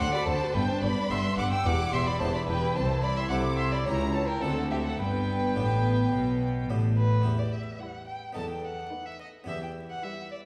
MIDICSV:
0, 0, Header, 1, 8, 480
1, 0, Start_track
1, 0, Key_signature, 1, "major"
1, 0, Tempo, 552486
1, 473, Time_signature, 4, 2, 24, 8
1, 3355, Tempo, 566038
1, 6235, Tempo, 556070
1, 6237, Key_signature, 1, "minor"
1, 8993, End_track
2, 0, Start_track
2, 0, Title_t, "Violin section"
2, 0, Program_c, 0, 48
2, 0, Note_on_c, 0, 84, 108
2, 107, Note_on_c, 0, 83, 109
2, 113, Note_off_c, 0, 84, 0
2, 221, Note_on_c, 0, 81, 109
2, 228, Note_off_c, 0, 83, 0
2, 467, Note_off_c, 0, 81, 0
2, 469, Note_on_c, 0, 79, 106
2, 587, Note_on_c, 0, 81, 99
2, 589, Note_off_c, 0, 79, 0
2, 711, Note_off_c, 0, 81, 0
2, 716, Note_on_c, 0, 83, 101
2, 955, Note_off_c, 0, 83, 0
2, 958, Note_on_c, 0, 84, 96
2, 1188, Note_on_c, 0, 86, 99
2, 1195, Note_off_c, 0, 84, 0
2, 1309, Note_on_c, 0, 88, 108
2, 1310, Note_off_c, 0, 86, 0
2, 1431, Note_off_c, 0, 88, 0
2, 1434, Note_on_c, 0, 86, 122
2, 1667, Note_on_c, 0, 84, 109
2, 1672, Note_off_c, 0, 86, 0
2, 1787, Note_off_c, 0, 84, 0
2, 1795, Note_on_c, 0, 83, 86
2, 1911, Note_off_c, 0, 83, 0
2, 1911, Note_on_c, 0, 81, 106
2, 1959, Note_off_c, 0, 81, 0
2, 2042, Note_on_c, 0, 83, 98
2, 2089, Note_off_c, 0, 83, 0
2, 2153, Note_on_c, 0, 79, 98
2, 2388, Note_off_c, 0, 79, 0
2, 2395, Note_on_c, 0, 81, 108
2, 2633, Note_off_c, 0, 81, 0
2, 2637, Note_on_c, 0, 83, 101
2, 2754, Note_off_c, 0, 83, 0
2, 2765, Note_on_c, 0, 84, 97
2, 2874, Note_on_c, 0, 86, 97
2, 2879, Note_off_c, 0, 84, 0
2, 3115, Note_off_c, 0, 86, 0
2, 3119, Note_on_c, 0, 84, 95
2, 3167, Note_off_c, 0, 84, 0
2, 3247, Note_on_c, 0, 83, 85
2, 3293, Note_off_c, 0, 83, 0
2, 3359, Note_on_c, 0, 82, 112
2, 3589, Note_off_c, 0, 82, 0
2, 3592, Note_on_c, 0, 81, 97
2, 3711, Note_off_c, 0, 81, 0
2, 3715, Note_on_c, 0, 79, 83
2, 3831, Note_on_c, 0, 78, 93
2, 3832, Note_off_c, 0, 79, 0
2, 4070, Note_off_c, 0, 78, 0
2, 4075, Note_on_c, 0, 76, 92
2, 4191, Note_off_c, 0, 76, 0
2, 4191, Note_on_c, 0, 78, 86
2, 4308, Note_on_c, 0, 79, 105
2, 4312, Note_off_c, 0, 78, 0
2, 5755, Note_off_c, 0, 79, 0
2, 6712, Note_on_c, 0, 71, 46
2, 7072, Note_off_c, 0, 71, 0
2, 7676, Note_on_c, 0, 71, 45
2, 8034, Note_off_c, 0, 71, 0
2, 8646, Note_on_c, 0, 71, 45
2, 8993, Note_off_c, 0, 71, 0
2, 8993, End_track
3, 0, Start_track
3, 0, Title_t, "Violin section"
3, 0, Program_c, 1, 48
3, 116, Note_on_c, 1, 83, 83
3, 164, Note_off_c, 1, 83, 0
3, 231, Note_on_c, 1, 81, 85
3, 467, Note_off_c, 1, 81, 0
3, 476, Note_on_c, 1, 79, 92
3, 593, Note_off_c, 1, 79, 0
3, 595, Note_on_c, 1, 81, 89
3, 714, Note_off_c, 1, 81, 0
3, 716, Note_on_c, 1, 83, 95
3, 950, Note_off_c, 1, 83, 0
3, 958, Note_on_c, 1, 84, 99
3, 1195, Note_off_c, 1, 84, 0
3, 1196, Note_on_c, 1, 86, 95
3, 1243, Note_off_c, 1, 86, 0
3, 1315, Note_on_c, 1, 88, 88
3, 1431, Note_off_c, 1, 88, 0
3, 1440, Note_on_c, 1, 86, 99
3, 1675, Note_on_c, 1, 84, 90
3, 1676, Note_off_c, 1, 86, 0
3, 1793, Note_off_c, 1, 84, 0
3, 1793, Note_on_c, 1, 83, 86
3, 1910, Note_on_c, 1, 81, 82
3, 1913, Note_off_c, 1, 83, 0
3, 2029, Note_off_c, 1, 81, 0
3, 2038, Note_on_c, 1, 83, 83
3, 2156, Note_off_c, 1, 83, 0
3, 2164, Note_on_c, 1, 79, 89
3, 2394, Note_off_c, 1, 79, 0
3, 2399, Note_on_c, 1, 81, 80
3, 2469, Note_off_c, 1, 81, 0
3, 2640, Note_on_c, 1, 83, 88
3, 2754, Note_off_c, 1, 83, 0
3, 2762, Note_on_c, 1, 84, 77
3, 2877, Note_off_c, 1, 84, 0
3, 2877, Note_on_c, 1, 86, 87
3, 3116, Note_off_c, 1, 86, 0
3, 3116, Note_on_c, 1, 84, 87
3, 3236, Note_off_c, 1, 84, 0
3, 3239, Note_on_c, 1, 83, 77
3, 3286, Note_off_c, 1, 83, 0
3, 3361, Note_on_c, 1, 82, 91
3, 3590, Note_off_c, 1, 82, 0
3, 3595, Note_on_c, 1, 81, 83
3, 3712, Note_off_c, 1, 81, 0
3, 3718, Note_on_c, 1, 79, 77
3, 3834, Note_off_c, 1, 79, 0
3, 3835, Note_on_c, 1, 78, 78
3, 3903, Note_off_c, 1, 78, 0
3, 4069, Note_on_c, 1, 76, 78
3, 4118, Note_off_c, 1, 76, 0
3, 4195, Note_on_c, 1, 78, 71
3, 4311, Note_off_c, 1, 78, 0
3, 4317, Note_on_c, 1, 79, 77
3, 5730, Note_off_c, 1, 79, 0
3, 6718, Note_on_c, 1, 64, 48
3, 7075, Note_off_c, 1, 64, 0
3, 7679, Note_on_c, 1, 63, 48
3, 8036, Note_off_c, 1, 63, 0
3, 8637, Note_on_c, 1, 64, 47
3, 8993, Note_off_c, 1, 64, 0
3, 8993, End_track
4, 0, Start_track
4, 0, Title_t, "Violin"
4, 0, Program_c, 2, 40
4, 2, Note_on_c, 2, 78, 112
4, 116, Note_off_c, 2, 78, 0
4, 125, Note_on_c, 2, 74, 86
4, 235, Note_off_c, 2, 74, 0
4, 240, Note_on_c, 2, 72, 90
4, 468, Note_on_c, 2, 71, 90
4, 481, Note_off_c, 2, 72, 0
4, 591, Note_off_c, 2, 71, 0
4, 597, Note_on_c, 2, 72, 78
4, 720, Note_on_c, 2, 74, 89
4, 734, Note_off_c, 2, 72, 0
4, 959, Note_on_c, 2, 76, 93
4, 972, Note_off_c, 2, 74, 0
4, 1196, Note_off_c, 2, 76, 0
4, 1202, Note_on_c, 2, 78, 98
4, 1315, Note_off_c, 2, 78, 0
4, 1325, Note_on_c, 2, 79, 89
4, 1440, Note_on_c, 2, 78, 87
4, 1453, Note_off_c, 2, 79, 0
4, 1678, Note_on_c, 2, 76, 84
4, 1691, Note_off_c, 2, 78, 0
4, 1797, Note_on_c, 2, 74, 86
4, 1810, Note_off_c, 2, 76, 0
4, 1913, Note_on_c, 2, 72, 90
4, 1926, Note_off_c, 2, 74, 0
4, 2029, Note_on_c, 2, 74, 83
4, 2042, Note_off_c, 2, 72, 0
4, 2135, Note_off_c, 2, 74, 0
4, 2140, Note_on_c, 2, 71, 92
4, 2396, Note_on_c, 2, 72, 85
4, 2409, Note_off_c, 2, 71, 0
4, 2633, Note_on_c, 2, 74, 90
4, 2646, Note_off_c, 2, 72, 0
4, 2751, Note_on_c, 2, 76, 85
4, 2764, Note_off_c, 2, 74, 0
4, 2852, Note_off_c, 2, 76, 0
4, 2857, Note_on_c, 2, 78, 89
4, 2927, Note_off_c, 2, 78, 0
4, 3100, Note_on_c, 2, 76, 84
4, 3230, Note_on_c, 2, 74, 81
4, 3243, Note_off_c, 2, 76, 0
4, 3348, Note_on_c, 2, 73, 87
4, 3361, Note_off_c, 2, 74, 0
4, 3572, Note_off_c, 2, 73, 0
4, 3577, Note_on_c, 2, 73, 79
4, 3706, Note_on_c, 2, 70, 81
4, 3719, Note_off_c, 2, 73, 0
4, 3824, Note_on_c, 2, 69, 82
4, 3837, Note_off_c, 2, 70, 0
4, 4059, Note_off_c, 2, 69, 0
4, 4064, Note_on_c, 2, 67, 74
4, 4180, Note_off_c, 2, 67, 0
4, 4185, Note_on_c, 2, 69, 73
4, 4313, Note_on_c, 2, 71, 83
4, 4326, Note_off_c, 2, 69, 0
4, 5757, Note_off_c, 2, 71, 0
4, 5992, Note_on_c, 2, 71, 82
4, 6348, Note_on_c, 2, 74, 61
4, 6361, Note_off_c, 2, 71, 0
4, 6465, Note_on_c, 2, 76, 55
4, 6478, Note_off_c, 2, 74, 0
4, 6703, Note_on_c, 2, 78, 60
4, 6716, Note_off_c, 2, 76, 0
4, 6935, Note_off_c, 2, 78, 0
4, 6940, Note_on_c, 2, 79, 59
4, 7184, Note_off_c, 2, 79, 0
4, 7189, Note_on_c, 2, 81, 63
4, 7307, Note_off_c, 2, 81, 0
4, 7313, Note_on_c, 2, 79, 55
4, 7431, Note_on_c, 2, 78, 58
4, 7444, Note_off_c, 2, 79, 0
4, 7791, Note_on_c, 2, 76, 59
4, 7804, Note_off_c, 2, 78, 0
4, 7907, Note_off_c, 2, 76, 0
4, 7912, Note_on_c, 2, 75, 58
4, 7981, Note_off_c, 2, 75, 0
4, 8154, Note_on_c, 2, 76, 63
4, 8273, Note_off_c, 2, 76, 0
4, 8279, Note_on_c, 2, 79, 53
4, 8348, Note_off_c, 2, 79, 0
4, 8512, Note_on_c, 2, 78, 60
4, 8629, Note_on_c, 2, 76, 61
4, 8642, Note_off_c, 2, 78, 0
4, 8872, Note_off_c, 2, 76, 0
4, 8876, Note_on_c, 2, 74, 59
4, 8945, Note_off_c, 2, 74, 0
4, 8993, End_track
5, 0, Start_track
5, 0, Title_t, "Viola section"
5, 0, Program_c, 3, 48
5, 0, Note_on_c, 3, 69, 68
5, 108, Note_off_c, 3, 69, 0
5, 114, Note_on_c, 3, 66, 62
5, 234, Note_off_c, 3, 66, 0
5, 238, Note_on_c, 3, 69, 61
5, 356, Note_off_c, 3, 69, 0
5, 364, Note_on_c, 3, 66, 67
5, 479, Note_off_c, 3, 66, 0
5, 491, Note_on_c, 3, 59, 75
5, 594, Note_off_c, 3, 59, 0
5, 607, Note_on_c, 3, 62, 69
5, 720, Note_off_c, 3, 62, 0
5, 725, Note_on_c, 3, 59, 66
5, 840, Note_off_c, 3, 59, 0
5, 847, Note_on_c, 3, 62, 66
5, 960, Note_off_c, 3, 62, 0
5, 965, Note_on_c, 3, 59, 65
5, 1071, Note_off_c, 3, 59, 0
5, 1084, Note_on_c, 3, 62, 62
5, 1197, Note_on_c, 3, 59, 57
5, 1198, Note_off_c, 3, 62, 0
5, 1315, Note_off_c, 3, 59, 0
5, 1321, Note_on_c, 3, 62, 63
5, 1437, Note_off_c, 3, 62, 0
5, 1442, Note_on_c, 3, 67, 66
5, 1549, Note_off_c, 3, 67, 0
5, 1568, Note_on_c, 3, 64, 60
5, 1680, Note_off_c, 3, 64, 0
5, 1685, Note_on_c, 3, 67, 65
5, 1798, Note_off_c, 3, 67, 0
5, 1803, Note_on_c, 3, 64, 59
5, 1918, Note_off_c, 3, 64, 0
5, 1922, Note_on_c, 3, 67, 69
5, 2029, Note_off_c, 3, 67, 0
5, 2041, Note_on_c, 3, 64, 62
5, 2157, Note_off_c, 3, 64, 0
5, 2162, Note_on_c, 3, 67, 65
5, 2278, Note_off_c, 3, 67, 0
5, 2284, Note_on_c, 3, 64, 69
5, 2392, Note_off_c, 3, 64, 0
5, 2402, Note_on_c, 3, 64, 75
5, 3326, Note_off_c, 3, 64, 0
5, 3360, Note_on_c, 3, 64, 71
5, 3823, Note_off_c, 3, 64, 0
5, 3831, Note_on_c, 3, 60, 72
5, 4312, Note_off_c, 3, 60, 0
5, 4314, Note_on_c, 3, 59, 79
5, 6066, Note_off_c, 3, 59, 0
5, 6712, Note_on_c, 3, 55, 44
5, 7072, Note_off_c, 3, 55, 0
5, 7667, Note_on_c, 3, 57, 47
5, 8029, Note_off_c, 3, 57, 0
5, 8637, Note_on_c, 3, 55, 46
5, 8993, Note_off_c, 3, 55, 0
5, 8993, End_track
6, 0, Start_track
6, 0, Title_t, "Harpsichord"
6, 0, Program_c, 4, 6
6, 0, Note_on_c, 4, 38, 65
6, 0, Note_on_c, 4, 60, 58
6, 0, Note_on_c, 4, 66, 54
6, 0, Note_on_c, 4, 69, 54
6, 210, Note_off_c, 4, 38, 0
6, 236, Note_on_c, 4, 38, 70
6, 340, Note_off_c, 4, 60, 0
6, 343, Note_off_c, 4, 66, 0
6, 343, Note_off_c, 4, 69, 0
6, 451, Note_off_c, 4, 38, 0
6, 477, Note_on_c, 4, 43, 66
6, 691, Note_off_c, 4, 43, 0
6, 710, Note_on_c, 4, 43, 75
6, 928, Note_off_c, 4, 43, 0
6, 957, Note_on_c, 4, 59, 57
6, 962, Note_on_c, 4, 62, 60
6, 963, Note_on_c, 4, 43, 63
6, 968, Note_on_c, 4, 71, 61
6, 1174, Note_off_c, 4, 43, 0
6, 1199, Note_on_c, 4, 43, 67
6, 1301, Note_off_c, 4, 59, 0
6, 1304, Note_off_c, 4, 62, 0
6, 1308, Note_off_c, 4, 71, 0
6, 1412, Note_off_c, 4, 43, 0
6, 1437, Note_on_c, 4, 40, 68
6, 1651, Note_off_c, 4, 40, 0
6, 1678, Note_on_c, 4, 40, 61
6, 1892, Note_off_c, 4, 40, 0
6, 1924, Note_on_c, 4, 40, 64
6, 1924, Note_on_c, 4, 59, 54
6, 1926, Note_on_c, 4, 64, 57
6, 1932, Note_on_c, 4, 71, 60
6, 2135, Note_off_c, 4, 40, 0
6, 2155, Note_on_c, 4, 40, 65
6, 2266, Note_off_c, 4, 59, 0
6, 2267, Note_off_c, 4, 64, 0
6, 2271, Note_off_c, 4, 71, 0
6, 2370, Note_off_c, 4, 40, 0
6, 2397, Note_on_c, 4, 36, 72
6, 2840, Note_off_c, 4, 36, 0
6, 2879, Note_on_c, 4, 48, 63
6, 2879, Note_on_c, 4, 57, 52
6, 2882, Note_on_c, 4, 64, 52
6, 2886, Note_on_c, 4, 72, 58
6, 3225, Note_off_c, 4, 57, 0
6, 3227, Note_off_c, 4, 64, 0
6, 3229, Note_off_c, 4, 72, 0
6, 3324, Note_off_c, 4, 48, 0
6, 3359, Note_on_c, 4, 37, 60
6, 3359, Note_on_c, 4, 61, 49
6, 3364, Note_on_c, 4, 64, 53
6, 3370, Note_on_c, 4, 67, 48
6, 3798, Note_off_c, 4, 37, 0
6, 3798, Note_off_c, 4, 61, 0
6, 3801, Note_off_c, 4, 64, 0
6, 3804, Note_off_c, 4, 67, 0
6, 3834, Note_on_c, 4, 38, 56
6, 3836, Note_on_c, 4, 60, 46
6, 3843, Note_on_c, 4, 62, 48
6, 3847, Note_on_c, 4, 69, 46
6, 4279, Note_off_c, 4, 38, 0
6, 4280, Note_off_c, 4, 60, 0
6, 4284, Note_off_c, 4, 62, 0
6, 4286, Note_off_c, 4, 69, 0
6, 4312, Note_on_c, 4, 43, 66
6, 4761, Note_off_c, 4, 43, 0
6, 4795, Note_on_c, 4, 45, 59
6, 4798, Note_on_c, 4, 59, 47
6, 4800, Note_on_c, 4, 62, 49
6, 4805, Note_on_c, 4, 67, 58
6, 5143, Note_off_c, 4, 59, 0
6, 5144, Note_off_c, 4, 62, 0
6, 5147, Note_off_c, 4, 67, 0
6, 5242, Note_off_c, 4, 45, 0
6, 5271, Note_on_c, 4, 47, 66
6, 5720, Note_off_c, 4, 47, 0
6, 5759, Note_on_c, 4, 45, 57
6, 5759, Note_on_c, 4, 59, 47
6, 5761, Note_on_c, 4, 62, 50
6, 5764, Note_on_c, 4, 67, 53
6, 6104, Note_off_c, 4, 59, 0
6, 6106, Note_off_c, 4, 62, 0
6, 6107, Note_off_c, 4, 67, 0
6, 6200, Note_on_c, 4, 59, 37
6, 6204, Note_off_c, 4, 45, 0
6, 6211, Note_on_c, 4, 64, 37
6, 6226, Note_on_c, 4, 67, 36
6, 6237, Note_on_c, 4, 40, 40
6, 6611, Note_off_c, 4, 40, 0
6, 7146, Note_off_c, 4, 59, 0
6, 7155, Note_off_c, 4, 64, 0
6, 7156, Note_on_c, 4, 59, 34
6, 7163, Note_off_c, 4, 67, 0
6, 7170, Note_on_c, 4, 63, 36
6, 7180, Note_on_c, 4, 69, 37
6, 7192, Note_on_c, 4, 40, 39
6, 7567, Note_off_c, 4, 40, 0
6, 8107, Note_off_c, 4, 59, 0
6, 8115, Note_off_c, 4, 63, 0
6, 8119, Note_on_c, 4, 59, 39
6, 8120, Note_off_c, 4, 69, 0
6, 8134, Note_on_c, 4, 64, 38
6, 8148, Note_on_c, 4, 67, 37
6, 8158, Note_on_c, 4, 40, 42
6, 8531, Note_off_c, 4, 40, 0
6, 8993, Note_off_c, 4, 59, 0
6, 8993, Note_off_c, 4, 64, 0
6, 8993, Note_off_c, 4, 67, 0
6, 8993, End_track
7, 0, Start_track
7, 0, Title_t, "Cello section"
7, 0, Program_c, 5, 48
7, 237, Note_on_c, 5, 38, 81
7, 306, Note_off_c, 5, 38, 0
7, 470, Note_on_c, 5, 43, 89
7, 539, Note_off_c, 5, 43, 0
7, 718, Note_on_c, 5, 43, 78
7, 788, Note_off_c, 5, 43, 0
7, 950, Note_on_c, 5, 43, 78
7, 1020, Note_off_c, 5, 43, 0
7, 1190, Note_on_c, 5, 43, 79
7, 1259, Note_off_c, 5, 43, 0
7, 1427, Note_on_c, 5, 40, 86
7, 1497, Note_off_c, 5, 40, 0
7, 1668, Note_on_c, 5, 40, 80
7, 1738, Note_off_c, 5, 40, 0
7, 1916, Note_on_c, 5, 40, 80
7, 1985, Note_off_c, 5, 40, 0
7, 2151, Note_on_c, 5, 40, 69
7, 2220, Note_off_c, 5, 40, 0
7, 2397, Note_on_c, 5, 36, 83
7, 2841, Note_off_c, 5, 36, 0
7, 2877, Note_on_c, 5, 48, 76
7, 3348, Note_off_c, 5, 48, 0
7, 3358, Note_on_c, 5, 37, 80
7, 3822, Note_off_c, 5, 37, 0
7, 3827, Note_on_c, 5, 38, 73
7, 4300, Note_off_c, 5, 38, 0
7, 4307, Note_on_c, 5, 43, 76
7, 4782, Note_off_c, 5, 43, 0
7, 4788, Note_on_c, 5, 45, 79
7, 5266, Note_on_c, 5, 47, 81
7, 5272, Note_off_c, 5, 45, 0
7, 5742, Note_off_c, 5, 47, 0
7, 5746, Note_on_c, 5, 45, 72
7, 6226, Note_on_c, 5, 40, 57
7, 6232, Note_off_c, 5, 45, 0
7, 6611, Note_off_c, 5, 40, 0
7, 7187, Note_on_c, 5, 40, 62
7, 7570, Note_off_c, 5, 40, 0
7, 8156, Note_on_c, 5, 40, 60
7, 8535, Note_off_c, 5, 40, 0
7, 8993, End_track
8, 0, Start_track
8, 0, Title_t, "Double bass section"
8, 0, Program_c, 6, 48
8, 236, Note_on_c, 6, 38, 80
8, 306, Note_off_c, 6, 38, 0
8, 477, Note_on_c, 6, 31, 79
8, 546, Note_off_c, 6, 31, 0
8, 715, Note_on_c, 6, 31, 81
8, 784, Note_off_c, 6, 31, 0
8, 956, Note_on_c, 6, 31, 89
8, 1025, Note_off_c, 6, 31, 0
8, 1194, Note_on_c, 6, 31, 80
8, 1263, Note_off_c, 6, 31, 0
8, 1432, Note_on_c, 6, 28, 86
8, 1502, Note_off_c, 6, 28, 0
8, 1671, Note_on_c, 6, 28, 71
8, 1741, Note_off_c, 6, 28, 0
8, 1915, Note_on_c, 6, 28, 76
8, 1985, Note_off_c, 6, 28, 0
8, 2156, Note_on_c, 6, 28, 80
8, 2225, Note_off_c, 6, 28, 0
8, 2396, Note_on_c, 6, 36, 87
8, 2841, Note_off_c, 6, 36, 0
8, 2877, Note_on_c, 6, 36, 86
8, 3348, Note_off_c, 6, 36, 0
8, 3356, Note_on_c, 6, 37, 87
8, 3821, Note_off_c, 6, 37, 0
8, 3832, Note_on_c, 6, 38, 72
8, 4302, Note_off_c, 6, 38, 0
8, 4307, Note_on_c, 6, 31, 78
8, 4783, Note_off_c, 6, 31, 0
8, 4791, Note_on_c, 6, 33, 84
8, 5271, Note_on_c, 6, 35, 77
8, 5274, Note_off_c, 6, 33, 0
8, 5744, Note_off_c, 6, 35, 0
8, 5754, Note_on_c, 6, 33, 75
8, 6236, Note_off_c, 6, 33, 0
8, 8993, End_track
0, 0, End_of_file